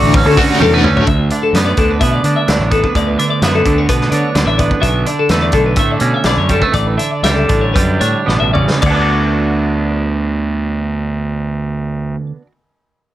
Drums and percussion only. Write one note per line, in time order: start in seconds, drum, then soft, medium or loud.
0.13 kick loud
0.13 open hi-hat medium
0.37 kick medium
0.37 open hi-hat medium
0.62 high tom medium
0.84 mid tom medium
0.97 floor tom medium
1.07 kick medium
1.07 closed hi-hat medium
1.30 closed hi-hat medium
1.55 snare medium
1.55 closed hi-hat medium
1.77 kick medium
1.77 closed hi-hat medium
2.01 kick medium
2.01 closed hi-hat medium
2.24 closed hi-hat medium
2.48 snare medium
2.48 closed hi-hat medium
2.71 kick medium
2.71 closed hi-hat medium
2.84 kick medium
2.95 kick medium
2.95 closed hi-hat medium
3.19 closed hi-hat medium
3.42 snare medium
3.42 closed hi-hat medium
3.65 kick medium
3.65 closed hi-hat medium
3.89 kick medium
3.89 closed hi-hat medium
4.01 snare soft
4.12 closed hi-hat medium
4.35 snare medium
4.35 closed hi-hat medium
4.59 kick medium
4.59 closed hi-hat medium
4.71 kick medium
4.83 kick medium
4.83 closed hi-hat medium
5.06 closed hi-hat medium
5.29 snare medium
5.29 closed hi-hat medium
5.52 kick medium
5.52 closed hi-hat medium
5.76 kick medium
5.76 closed hi-hat medium
6.00 closed hi-hat medium
6.24 snare medium
6.24 closed hi-hat medium
6.49 kick medium
6.49 closed hi-hat medium
6.62 kick medium
6.73 kick medium
6.73 closed hi-hat medium
6.99 closed hi-hat medium
7.24 snare medium
7.24 closed hi-hat medium
7.49 kick medium
7.49 closed hi-hat medium
7.76 kick medium
7.76 closed hi-hat medium
8.01 closed hi-hat medium
8.29 snare soft
8.55 mid tom medium
8.70 snare medium
8.82 kick medium
8.82 crash medium